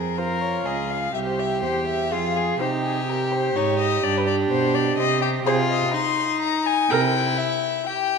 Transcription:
Already playing: cello F2, viola G#4, violin A#4
0.18 viola F4, violin A#4 C5
0.41 violin C#5
0.66 cello C#2, violin G#4 D#5
0.90 violin F5
1.14 cello C2, violin G4 E5, viola G4
1.27 violin C5
1.39 violin E5
1.63 cello E2, viola G4, violin C5
1.87 violin E5
2.12 cello F2, violin F4 F5, viola G#4
2.36 violin G#4
2.60 cello C3, viola D#4, violin G4 C5
2.84 violin G#4
3.08 viola G4, violin A#4
3.32 violin C5
3.56 cello G#2, violin D#4 C#5
3.79 violin D#5
4.03 cello G2, violin D4 D5
4.17 violin B4
4.27 violin D5
4.50 cello B2, violin C5
4.74 violin D5
4.98 cello C3, violin C4 D#5, viola G4
5.22 violin G4
5.45 cello C3, violin F4 C5, viola G#4
5.70 violin D#5
5.94 violin D#4 C6
6.42 violin A#5
6.66 violin G#5
6.90 cello C3, violin E4 G5, viola A#4
7.38 violin E5
7.86 violin G4 G5

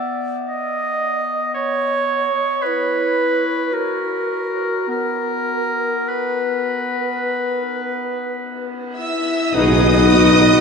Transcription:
Already playing: clarinet B3
0.48 oboe D#5, flute D#5
1.54 oboe C#5, flute C#5
2.62 clarinet E4, oboe B4
2.66 flute B4
3.72 clarinet F#4, oboe A#4, flute A#4
4.88 clarinet B3, flute A#4, oboe A#4
6.08 oboe B4, flute B4
8.95 french horn section E4, violin section E5 E6, trumpet E5
9.51 double bass section B1, viola section D#4 F#4, clarinet B4, violin section D#5 D#6, trumpet D#5, oboe F#5, flute B5, tam-tam
9.55 tuba B1, trombone section F#3 B3, french horn section D#4, cello section G#4
9.79 viola section B3 D#4
10.08 viola section D#4 F#4, cello section F#4
10.35 viola section B3 D#4

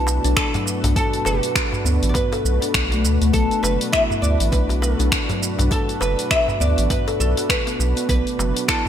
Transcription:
Already playing: analog synth bass B1, analog synth pad B2 A3 D4 F#4 B4, oud A4
0.07 darbuka ka, darbuka tek, shaker
0.24 analog synth bass B1, kalimba D4, open hi-hat, shaker
0.36 oud A4, finger snap, kick, open hi-hat, shaker
0.54 kalimba F#3, open hi-hat, darbuka dum, shaker
0.66 darbuka ka, darbuka tek, shaker
0.84 analog synth bass B1, kalimba D4, open hi-hat, darbuka dum, shaker
0.96 kalimba F#4, oud A4, kick, open hi-hat, shaker
1.13 open hi-hat, shaker
1.25 analog synth bass F#1, oud F#4, kalimba B4, darbuka tek, shaker
1.43 open hi-hat, shaker
1.55 kalimba F#4, finger snap, kick, open hi-hat, shaker
1.73 darbuka dum, shaker
1.85 analog synth bass D2, kalimba B3, shaker
2.03 analog synth bass A1, open hi-hat, darbuka ka, shaker
2.09 oud D5
2.14 kalimba F#4, oud B4, kick, open hi-hat, darbuka tek, darbuka dum, shaker
2.32 kalimba A4, open hi-hat, darbuka ka, darbuka tek, shaker
2.45 analog synth bass B1, shaker
2.62 kalimba D4, open hi-hat, darbuka ka, shaker
2.74 analog synth bass B1, finger snap, kick, open hi-hat, shaker
2.91 kalimba A3, open hi-hat, darbuka ka, darbuka tek, shaker
3.04 analog synth bass D2, darbuka ka, darbuka tek, shaker
3.21 analog synth bass D2, kalimba A3, open hi-hat, shaker
3.33 analog synth bass B1, kalimba B3, oud A4, kick, open hi-hat, shaker
3.51 open hi-hat, shaker
3.63 analog synth bass F#1, kalimba F#3, oud B4, darbuka tek, shaker
3.81 open hi-hat, shaker
3.93 kalimba E4, oud E5, finger snap, kick, open hi-hat, shaker
4.10 darbuka dum, shaker
4.22 analog synth bass D2, kalimba B3, oud D5, shaker
4.40 analog synth bass A1, open hi-hat, shaker
4.52 analog synth bass B1, kalimba D4, oud B4, kick, open hi-hat, darbuka tek, shaker
4.69 kalimba F#4, open hi-hat, darbuka ka, shaker
4.82 oud A4, darbuka ka, darbuka tek, shaker
4.99 analog synth bass B1, kalimba D4, open hi-hat, shaker
5.12 finger snap, kick, open hi-hat, shaker
5.29 kalimba F#3, open hi-hat, darbuka dum, shaker
5.42 darbuka ka, darbuka tek, shaker
5.58 analog synth bass B1, kalimba D4, open hi-hat, darbuka dum, shaker
5.71 kalimba F#4, oud A4, kick, open hi-hat, shaker
5.89 open hi-hat, shaker
6.01 analog synth bass F#1, kalimba B4, oud B4, darbuka tek, shaker
6.19 open hi-hat, shaker
6.31 kalimba F#4, oud E5, finger snap, kick, open hi-hat, shaker
6.48 darbuka dum, shaker
6.60 analog synth bass D2, kalimba B3, oud D5, shaker
6.78 analog synth bass A1, open hi-hat, darbuka ka, shaker
6.90 kalimba F#4, oud B4, kick, open hi-hat, darbuka tek, darbuka dum, shaker
7.08 kalimba A4, open hi-hat, darbuka ka, darbuka tek, shaker
7.20 analog synth bass B1, oud A4, shaker
7.37 kalimba F#4, open hi-hat, darbuka ka, shaker
7.49 oud B4, finger snap, kick, open hi-hat, shaker
7.67 kalimba B3, open hi-hat, darbuka ka, darbuka tek, shaker
7.79 analog synth bass B1, darbuka ka, darbuka tek, shaker
7.96 kalimba B3, open hi-hat, shaker
8.09 analog synth bass B1, kalimba B3, oud B4, kick, open hi-hat, shaker
8.27 open hi-hat, shaker
8.39 analog synth bass F#1, kalimba F#3, darbuka tek, shaker
8.57 open hi-hat, shaker
8.68 kalimba E4, oud A4, finger snap, kick, open hi-hat, shaker

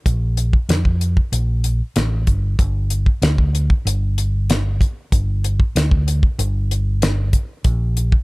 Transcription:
0.06 fingered electric bass A#1, kick, closed hi-hat
0.37 closed hi-hat
0.53 kick
0.69 fingered electric bass F2, snare, closed hi-hat
0.85 kick
1.01 closed hi-hat
1.17 kick
1.32 fingered electric bass A#1, closed hi-hat
1.64 closed hi-hat
1.96 fingered electric bass A1, snare, closed hi-hat
2.27 fingered electric bass G1, kick, closed hi-hat
2.59 fingered electric bass G1, kick, closed hi-hat
2.90 closed hi-hat
3.06 kick
3.22 fingered electric bass D2, snare, closed hi-hat
3.38 kick
3.55 closed hi-hat
3.70 kick
3.85 fingered electric bass G1, closed hi-hat
4.18 closed hi-hat
4.50 snare, closed hi-hat
4.81 kick, closed hi-hat
5.12 fingered electric bass G1, kick, closed hi-hat
5.44 closed hi-hat
5.60 kick
5.76 fingered electric bass D2, snare, closed hi-hat
5.91 kick
6.08 closed hi-hat
6.23 kick
6.38 fingered electric bass G1, closed hi-hat
6.71 closed hi-hat
7.02 snare, closed hi-hat
7.33 kick, closed hi-hat
7.64 fingered electric bass A#1, kick, closed hi-hat
7.97 closed hi-hat
8.12 kick

